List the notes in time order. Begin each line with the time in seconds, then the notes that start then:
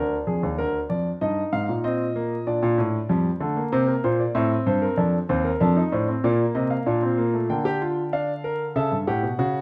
Already playing: D2 D4 A#4
0.27 F2 G#4
0.43 D#2
0.58 D2 A#4
0.90 F2 D5
1.21 G2 D#4 D#5
1.53 G#2 F5
1.69 A#2
1.84 C4 D#5
2.16 A#3
2.47 A#2 D4 D5
2.62 A#2
2.78 A2
3.09 F2 G3
3.40 D3 A3
3.57 A#3
3.72 C3 C5
3.87 A#4
4.04 A#2 C5
4.20 D5
4.35 A2 C4 E5
4.66 G2 C5
4.82 A#4
4.97 F2 D4 A4
5.29 D#2 C4 C5
5.44 A#4
5.60 F2 D4 A4
5.77 D#4
5.92 A2 D4 C5
6.08 C4
6.24 A#2 A#3 D5
6.55 C3 D#5
6.70 F5
6.86 A#2 D4
7.02 C4
7.18 A#3
7.33 A3
7.49 D3 A#3 G5
7.65 G4
7.82 F4
8.13 D4 F5
8.44 A#4
8.76 C#3 A4 E5
8.92 G2
9.07 A2 G4 F#5
9.23 B2
9.38 C#3 F#4